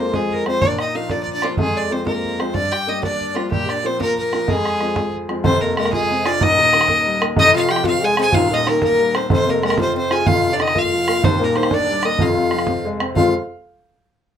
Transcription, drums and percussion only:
0.14 bodhran
0.31 bodhran
0.46 bodhran
0.62 bodhran
0.79 bodhran
1.09 bodhran
1.27 bodhran
1.42 bodhran
1.57 bodhran
2.07 bodhran
2.25 bodhran
2.40 bodhran
2.54 bodhran
2.72 bodhran
3.03 bodhran
3.21 bodhran
3.36 bodhran
3.52 bodhran
3.69 bodhran
4.01 bodhran
4.18 bodhran
4.33 bodhran
4.48 bodhran
4.65 bodhran
4.81 bodhran
4.96 bodhran
5.14 bodhran
5.29 bodhran
5.44 bodhran
5.62 bodhran
5.77 bodhran
5.85 bodhran
5.93 bodhran
6.02 bodhran
6.26 bodhran
6.41 bodhran
6.58 bodhran
6.73 bodhran
6.81 bodhran
6.88 bodhran
6.97 bodhran
7.22 bodhran
7.37 bodhran
7.54 bodhran
7.69 bodhran
7.76 bodhran
7.84 bodhran
7.94 bodhran
8.17 bodhran
8.33 bodhran
8.51 bodhran
8.67 bodhran
8.82 bodhran
8.91 bodhran
9.15 bodhran
9.30 bodhran
9.49 bodhran
9.63 bodhran
9.70 bodhran
9.78 bodhran
9.87 bodhran
10.11 bodhran
10.26 bodhran
10.44 bodhran
10.60 bodhran
10.68 bodhran
10.76 bodhran
10.84 bodhran
11.08 bodhran
11.24 bodhran
11.41 bodhran
11.56 bodhran
11.63 bodhran
11.71 bodhran
11.79 bodhran
12.03 bodhran
12.19 bodhran
12.37 bodhran
12.51 bodhran
12.59 bodhran
12.67 bodhran
12.76 bodhran
13.00 bodhran
13.16 bodhran

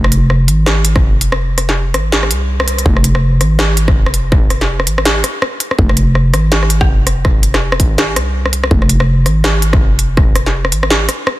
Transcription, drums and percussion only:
0.04 cross-stick
0.12 closed hi-hat
0.30 cross-stick
0.48 closed hi-hat
0.66 cross-stick, snare
0.85 closed hi-hat
0.96 kick, cross-stick
1.21 closed hi-hat
1.32 cross-stick
1.58 cross-stick, closed hi-hat
1.69 snare
1.94 cross-stick, closed hi-hat
2.12 snare
2.23 cross-stick
2.31 closed hi-hat
2.60 cross-stick
2.68 closed hi-hat
2.79 closed hi-hat
2.86 kick
2.97 cross-stick
3.04 closed hi-hat
3.15 cross-stick
3.41 cross-stick, closed hi-hat
3.59 cross-stick, snare
3.77 closed hi-hat
3.88 kick, cross-stick
4.06 cross-stick
4.14 closed hi-hat
4.32 kick, cross-stick
4.50 cross-stick, closed hi-hat
4.61 snare
4.80 cross-stick
4.87 closed hi-hat
4.98 cross-stick
5.05 snare
5.24 cross-stick, closed hi-hat
5.42 cross-stick
5.60 closed hi-hat
5.71 cross-stick
5.79 kick
5.89 cross-stick
5.97 closed hi-hat
6.15 cross-stick
6.34 cross-stick, closed hi-hat
6.52 snare
6.63 cross-stick
6.70 closed hi-hat
6.81 kick, cross-stick
7.07 cross-stick, closed hi-hat
7.25 kick, cross-stick
7.43 closed hi-hat
7.54 cross-stick, snare
7.72 cross-stick
7.80 kick, closed hi-hat
7.98 cross-stick, snare
8.16 cross-stick, closed hi-hat
8.46 cross-stick
8.53 closed hi-hat
8.64 cross-stick
8.71 kick
8.82 cross-stick
8.89 closed hi-hat
9.00 cross-stick
9.26 cross-stick, closed hi-hat
9.44 cross-stick, snare
9.62 closed hi-hat
9.73 kick, cross-stick
9.99 closed hi-hat
10.17 kick, cross-stick
10.36 cross-stick, closed hi-hat
10.46 snare
10.65 cross-stick
10.72 closed hi-hat
10.83 cross-stick
10.90 snare
11.09 cross-stick, closed hi-hat
11.27 cross-stick

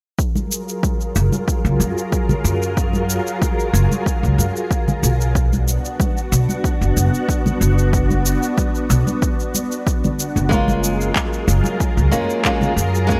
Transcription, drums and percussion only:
0.19 kick, shaker
0.36 high conga, shaker
0.52 shaker
0.69 shaker
0.83 kick, high conga, shaker
1.01 shaker
1.16 shaker
1.32 high conga, shaker
1.48 kick, shaker
1.66 shaker
1.80 high conga, shaker
1.98 shaker
2.12 kick, shaker
2.29 high conga, low conga, shaker
2.45 shaker
2.62 shaker
2.77 kick, shaker
2.93 high conga, shaker
3.10 shaker
3.27 shaker
3.42 kick, high conga, shaker
3.60 shaker
3.75 shaker
3.92 high conga, shaker
4.06 kick, shaker
4.24 shaker
4.38 high conga, shaker
4.56 shaker
4.71 kick, shaker
4.88 high conga, low conga, shaker
5.04 shaker
5.21 shaker
5.35 kick, shaker
5.53 high conga, shaker
5.68 shaker
5.85 shaker
6.00 kick, high conga, shaker
6.17 shaker
6.33 shaker
6.49 high conga, shaker
6.64 kick, shaker
6.82 shaker
6.97 high conga, shaker
7.14 shaker
7.29 kick, shaker
7.46 high conga, low conga, shaker
7.62 shaker
7.79 shaker
7.93 kick, shaker
8.10 high conga, shaker
8.26 shaker
8.43 shaker
8.58 kick, high conga, shaker
8.75 shaker
8.90 shaker
9.07 high conga, shaker
9.22 kick, shaker
9.40 shaker
9.55 high conga, shaker
9.72 shaker
9.87 kick, shaker
10.04 high conga, low conga, shaker
10.20 shaker
10.37 shaker
10.51 kick, shaker
10.68 high conga, shaker
10.84 shaker
11.01 shaker
11.16 kick, clap, high conga, shaker
11.33 shaker
11.48 shaker
11.64 high conga, shaker
11.80 kick, shaker
11.98 shaker
12.11 high conga, shaker
12.30 shaker
12.45 kick, clap, shaker
12.61 high conga, low conga, shaker
12.78 shaker
12.95 shaker
13.09 kick, shaker

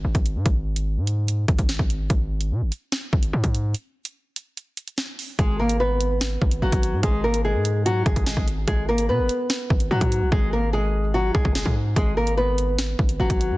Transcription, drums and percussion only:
0.15 kick, closed hi-hat
0.26 closed hi-hat
0.46 kick, closed hi-hat
0.76 closed hi-hat
1.07 closed hi-hat
1.28 closed hi-hat
1.48 kick, closed hi-hat
1.59 kick, closed hi-hat
1.69 snare
1.79 kick
1.90 closed hi-hat
2.10 kick, closed hi-hat
2.41 closed hi-hat
2.72 closed hi-hat
2.92 snare, closed hi-hat
3.13 kick
3.23 closed hi-hat
3.44 kick, closed hi-hat
3.55 closed hi-hat
3.74 closed hi-hat
4.05 closed hi-hat
4.36 closed hi-hat
4.57 closed hi-hat
4.77 closed hi-hat
4.88 closed hi-hat
4.98 snare
5.19 open hi-hat
5.39 kick, closed hi-hat
5.69 closed hi-hat
6.01 closed hi-hat
6.21 snare, closed hi-hat
6.42 kick
6.51 closed hi-hat
6.72 kick, closed hi-hat
6.83 closed hi-hat
7.03 kick, closed hi-hat
7.34 closed hi-hat
7.65 closed hi-hat
7.86 closed hi-hat
8.06 kick, closed hi-hat
8.16 kick, closed hi-hat
8.26 snare
8.37 kick
8.48 closed hi-hat
8.68 kick, closed hi-hat
8.98 closed hi-hat
9.29 closed hi-hat
9.50 snare, closed hi-hat
9.70 kick
9.80 closed hi-hat
10.01 kick, closed hi-hat
10.12 closed hi-hat
10.32 kick
11.35 kick
11.45 kick
11.55 snare
11.66 kick
11.96 kick, closed hi-hat
12.27 closed hi-hat
12.58 closed hi-hat
12.79 snare, closed hi-hat
12.99 kick
13.09 closed hi-hat
13.30 kick, closed hi-hat
13.41 closed hi-hat

